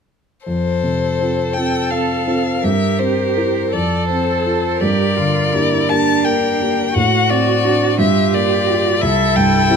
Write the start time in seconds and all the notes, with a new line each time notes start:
0.46 F2 A4 C5
0.83 C3
1.20 C4 F4 A4
1.53 C4 F4 A4 G5
1.90 C4 F5
2.27 C4 F4 A4
2.64 G2 G4 A#4 E5
2.98 C4 C5
3.37 E4 A#4
3.72 F2 A4 D5
4.09 C4 C5
4.46 F4 A4
4.80 G2 G4 A#4 D5
5.17 D3 F4
5.53 A#3 D4 E4 G4
5.89 A#3 D4 G4 A5
6.24 A#3 G5
6.61 A#3 D4 G4
6.94 A2 F#4 F#5
7.30 C4 D5
7.65 D4 F#4
7.97 G2 F4 G4 E5
8.34 A#3 D5
8.68 F4 G4
9.01 C2 E4 A4 E5
9.36 G2 G5
9.69 C4 E4 G4